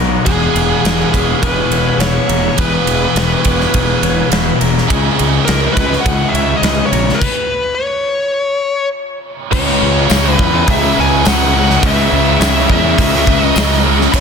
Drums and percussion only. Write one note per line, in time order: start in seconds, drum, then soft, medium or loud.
0.26 kick loud
0.26 ride medium
0.56 ride medium
0.85 snare medium
0.85 ride medium
1.14 kick medium
1.14 ride medium
1.43 kick loud
1.43 ride medium
1.72 ride medium
2.00 snare loud
2.00 ride medium
2.29 ride medium
2.58 kick loud
2.58 ride medium
2.87 ride medium
3.16 snare loud
3.16 ride medium
3.45 kick medium
3.45 ride medium
3.61 snare soft
3.74 kick loud
3.74 ride medium
4.03 ride medium
4.32 snare medium
4.32 ride medium
4.61 ride medium
4.78 snare soft
4.90 kick medium
4.90 ride medium
5.19 ride medium
5.48 snare loud
5.48 ride medium
5.77 kick medium
5.77 ride medium
5.93 snare soft
6.06 kick loud
6.06 ride medium
6.35 ride medium
6.63 snare medium
6.63 ride medium
6.93 ride medium
7.09 snare soft
7.22 kick loud
7.22 crash medium
9.53 kick loud
9.53 crash loud
10.10 snare loud
10.10 open hi-hat medium
10.10 tambourine loud
10.39 kick medium
10.67 kick loud
10.67 open hi-hat medium
11.25 snare loud
11.25 open hi-hat medium
11.25 tambourine loud
11.70 snare soft
11.83 kick loud
11.83 open hi-hat medium
12.41 snare loud
12.41 open hi-hat medium
12.41 tambourine loud
12.70 kick medium
12.98 kick loud
12.98 open hi-hat medium
13.27 kick medium
13.56 snare loud
13.56 open hi-hat medium
13.56 tambourine loud
13.73 snare soft
14.01 snare soft
14.14 kick loud
14.14 crash loud